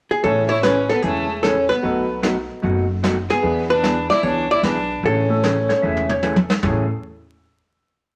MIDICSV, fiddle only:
0, 0, Header, 1, 2, 480
1, 0, Start_track
1, 0, Key_signature, 3, "major"
1, 0, Tempo, 399202
1, 286, Time_signature, 4, 2, 24, 8
1, 9809, End_track
2, 0, Start_track
2, 0, Title_t, "Fiddle"
2, 0, Program_c, 0, 110
2, 288, Note_on_c, 0, 61, 82
2, 576, Note_off_c, 0, 61, 0
2, 584, Note_on_c, 0, 64, 80
2, 744, Note_off_c, 0, 64, 0
2, 759, Note_on_c, 0, 61, 78
2, 1057, Note_off_c, 0, 61, 0
2, 1097, Note_on_c, 0, 59, 77
2, 1260, Note_on_c, 0, 57, 81
2, 1278, Note_off_c, 0, 59, 0
2, 1733, Note_off_c, 0, 57, 0
2, 1745, Note_on_c, 0, 61, 74
2, 2031, Note_off_c, 0, 61, 0
2, 2059, Note_on_c, 0, 59, 75
2, 2651, Note_off_c, 0, 59, 0
2, 3968, Note_on_c, 0, 59, 77
2, 4414, Note_off_c, 0, 59, 0
2, 4462, Note_on_c, 0, 62, 83
2, 4902, Note_off_c, 0, 62, 0
2, 4954, Note_on_c, 0, 64, 84
2, 5118, Note_on_c, 0, 62, 88
2, 5136, Note_off_c, 0, 64, 0
2, 5421, Note_off_c, 0, 62, 0
2, 5439, Note_on_c, 0, 64, 86
2, 5583, Note_on_c, 0, 62, 76
2, 5601, Note_off_c, 0, 64, 0
2, 6057, Note_off_c, 0, 62, 0
2, 6089, Note_on_c, 0, 61, 78
2, 7461, Note_off_c, 0, 61, 0
2, 9809, End_track
0, 0, End_of_file